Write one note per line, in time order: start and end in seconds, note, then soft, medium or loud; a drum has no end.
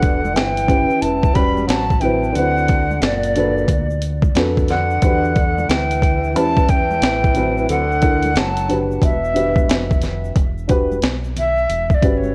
0.00 0.35 E1 medium
0.00 0.35 D3 medium
0.00 0.18 B3 medium
0.00 0.18 D4 medium
0.00 0.19 F#4 medium
0.00 0.19 G4 medium
0.00 0.37 F#5 medium
0.00 kick medium
0.00 closed hi-hat medium
0.00 shaker soft
0.25 high conga medium
0.25 shaker medium
0.34 0.87 G1 medium
0.34 1.00 E3 medium
0.34 1.03 G5 loud
0.34 snare loud
0.34 closed hi-hat medium
0.34 high conga soft
0.34 shaker medium
0.57 closed hi-hat medium
0.57 shaker soft
0.67 1.18 C#4 medium
0.67 1.19 E4 medium
0.67 1.19 G4 medium
0.67 1.20 B4 medium
0.67 kick loud
0.67 closed hi-hat medium
0.67 low conga medium
0.67 shaker soft
0.90 muted fingered electric bass stroke soft
0.90 shaker soft
1.00 1.65 E1 medium
1.00 1.35 E3 medium
1.00 1.37 A5 loud
1.00 closed hi-hat medium
1.00 high conga soft
1.00 shaker medium
1.23 kick medium
1.23 shaker medium
1.34 1.66 G3 medium
1.34 1.76 C#4 medium
1.34 1.77 F#4 medium
1.34 1.77 G4 medium
1.34 1.78 B4 medium
1.34 1.68 B5 loud
1.34 kick loud
1.34 closed hi-hat medium
1.34 shaker soft
1.57 high conga medium
1.57 shaker soft
1.67 2.32 A1 medium
1.67 2.01 F#3 medium
1.67 2.03 A5 loud
1.67 snare loud
1.67 closed hi-hat medium
1.67 shaker medium
1.91 kick medium
1.91 shaker soft
2.00 2.34 E3 medium
2.00 2.44 F#3 medium
2.00 2.33 C4 medium
2.00 2.34 E4 medium
2.00 2.37 B4 medium
2.00 2.37 G5 medium
2.00 closed hi-hat medium
2.00 low conga medium
2.00 shaker soft
2.24 shaker medium
2.33 2.99 D2 medium
2.33 3.03 D3 medium
2.33 2.77 C4 medium
2.33 2.77 E4 medium
2.33 3.04 F#5 loud
2.33 closed hi-hat medium
2.33 shaker medium
2.37 2.78 F#4 medium
2.37 2.79 B4 medium
2.57 shaker soft
2.68 kick medium
2.68 closed hi-hat medium
2.68 shaker soft
2.91 high conga medium
2.91 shaker soft
3.01 3.65 F#1 loud
3.01 4.02 A#2 medium
3.01 4.02 D5 medium
3.01 snare loud
3.01 closed hi-hat medium
3.01 high conga soft
3.01 shaker medium
3.24 closed hi-hat medium
3.24 shaker soft
3.36 3.61 D4 medium
3.36 3.62 F#4 medium
3.36 3.62 A4 medium
3.36 3.63 B4 medium
3.36 closed hi-hat medium
3.36 low conga medium
3.36 shaker soft
3.58 shaker soft
3.68 4.32 D2 medium
3.68 kick medium
3.68 closed hi-hat medium
3.68 high conga soft
3.68 shaker medium
3.91 shaker medium
4.02 closed hi-hat medium
4.02 shaker soft
4.23 kick loud
4.23 high conga medium
4.23 shaker soft
4.35 4.99 F2 medium
4.35 4.86 D4 medium
4.35 4.86 F#4 medium
4.35 4.87 A4 medium
4.35 4.87 B4 medium
4.35 snare loud
4.35 closed hi-hat medium
4.35 shaker medium
4.57 kick medium
4.57 shaker soft
4.68 5.71 D3 medium
4.68 5.71 F#5 medium
4.68 snare soft
4.68 closed hi-hat medium
4.68 low conga medium
4.68 shaker soft
4.90 shaker soft
5.02 5.65 E2 medium
5.02 5.28 D4 medium
5.02 5.28 F#4 medium
5.02 5.29 G4 medium
5.02 5.29 B4 medium
5.02 kick loud
5.02 closed hi-hat medium
5.02 shaker medium
5.24 shaker soft
5.36 kick medium
5.36 closed hi-hat medium
5.36 shaker soft
5.58 high conga medium
5.58 shaker soft
5.69 6.35 D2 medium
5.69 6.35 E3 medium
5.69 6.38 G5 loud
5.69 snare loud
5.69 closed hi-hat medium
5.69 high conga soft
5.69 shaker medium
5.90 closed hi-hat medium
5.90 shaker soft
6.02 kick medium
6.02 closed hi-hat medium
6.02 low conga medium
6.02 shaker soft
6.24 shaker soft
6.34 6.99 E2 loud
6.34 6.70 E3 medium
6.34 6.76 C#4 medium
6.34 6.77 E4 medium
6.34 6.77 G4 medium
6.34 6.78 B4 medium
6.34 6.71 A5 loud
6.34 closed hi-hat medium
6.34 high conga soft
6.34 shaker medium
6.57 kick medium
6.57 shaker soft
6.68 7.68 E3 medium
6.68 7.69 G5 loud
6.68 kick medium
6.68 closed hi-hat medium
6.68 shaker soft
6.91 high conga medium
6.91 shaker soft
7.02 7.65 A1 medium
7.02 snare loud
7.02 closed hi-hat medium
7.02 shaker medium
7.24 kick medium
7.24 shaker soft
7.34 7.77 F#3 medium
7.34 7.76 C4 medium
7.34 7.77 E4 medium
7.34 7.78 B4 medium
7.34 closed hi-hat medium
7.34 low conga medium
7.34 shaker soft
7.58 shaker soft
7.69 8.37 D2 medium
7.69 8.38 D3 medium
7.69 8.40 F#5 loud
7.69 closed hi-hat medium
7.69 shaker medium
7.92 shaker soft
8.01 8.27 D4 medium
8.01 8.28 E4 medium
8.01 8.28 A4 soft
8.01 8.29 A#4 medium
8.01 kick medium
8.01 closed hi-hat medium
8.01 shaker soft
8.23 closed hi-hat soft
8.23 high conga medium
8.23 shaker soft
8.35 8.99 F#1 medium
8.35 8.77 F#3 medium
8.35 8.78 A5 loud
8.35 snare loud
8.35 closed hi-hat medium
8.35 high conga soft
8.35 shaker medium
8.57 closed hi-hat medium
8.57 shaker soft
8.68 9.10 D4 medium
8.68 9.11 F#4 medium
8.68 9.11 G4 medium
8.68 9.12 B4 medium
8.68 closed hi-hat medium
8.68 low conga medium
8.68 shaker soft
8.91 shaker medium
9.02 9.65 E1 loud
9.02 9.98 B2 medium
9.02 9.99 E5 medium
9.02 kick medium
9.02 closed hi-hat medium
9.02 high conga soft
9.02 shaker medium
9.25 shaker soft
9.34 10.30 D4 medium
9.34 10.30 F#4 medium
9.34 10.30 G4 medium
9.34 10.31 B4 medium
9.34 closed hi-hat medium
9.34 low conga medium
9.34 shaker soft
9.56 kick medium
9.56 high conga medium
9.56 shaker soft
9.69 10.32 F1 medium
9.69 snare loud
9.69 closed hi-hat medium
9.69 shaker medium
9.91 kick medium
9.91 shaker soft
10.02 snare soft
10.02 closed hi-hat medium
10.02 low conga medium
10.02 shaker soft
10.25 shaker medium
10.36 10.99 E1 medium
10.36 kick loud
10.36 closed hi-hat medium
10.36 shaker medium
10.58 shaker soft
10.67 10.94 D4 medium
10.67 10.94 F#4 medium
10.67 10.95 G4 medium
10.67 10.96 B4 loud
10.67 kick medium
10.67 closed hi-hat medium
10.67 shaker soft
10.92 high conga medium
10.92 shaker soft
11.02 11.65 B1 medium
11.02 snare loud
11.02 closed hi-hat medium
11.02 high conga soft
11.02 shaker medium
11.24 shaker soft
11.36 11.96 E5 medium
11.36 closed hi-hat medium
11.36 low conga medium
11.36 shaker soft
11.57 shaker soft
11.69 12.01 E1 medium
11.69 closed hi-hat medium
11.69 high conga soft
11.69 shaker medium
11.90 kick medium
11.90 shaker soft
11.94 12.19 D5 medium
12.01 12.34 G1 medium
12.01 12.27 C#4 medium
12.01 12.28 F#4 medium
12.01 12.28 G4 medium
12.01 12.29 B4 medium
12.01 kick medium
12.01 closed hi-hat medium
12.01 shaker soft
12.17 12.35 C#5 medium
12.23 high conga medium
12.23 shaker soft